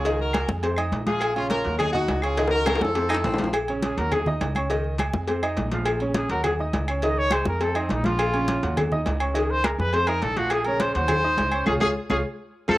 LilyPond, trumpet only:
\new Staff \with { instrumentName = "Trumpet" } { \time 4/4 \key bes \minor \tempo 4 = 206 r1 | r1 | r1 | r4 aes'8 bes'8 aes'8 r4. |
r1 | r4 aes'8 bes'8 aes'8 r4. | ees''8 des''8 c''8 bes'8 a'8 c'8 ees'8 f'8~ | f'2 r2 |
aes'8 c''8 bes'8 ces''8 c''8 bes'8 a'8 ges'8 | aes'8 bes'8 c''8 c''2~ c''8 | aes'8 aes'8 r8 aes'8 r4. a'8 | }